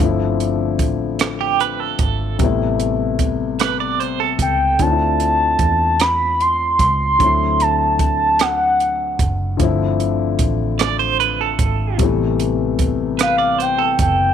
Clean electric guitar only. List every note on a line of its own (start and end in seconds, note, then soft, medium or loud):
1.41 1.59 G4 medium
1.61 1.80 B4 medium
1.80 2.37 A4 medium
3.60 3.79 B4 medium
3.80 4.00 D5 medium
4.00 4.19 C5 medium
4.20 4.77 A4 medium
10.79 10.98 D5 medium
10.99 11.18 C5 medium
11.20 11.39 B4 medium
11.41 11.97 A4 medium
13.19 13.38 B4 medium
13.38 13.58 D5 medium
13.58 13.78 C5 medium
13.78 14.34 A4 medium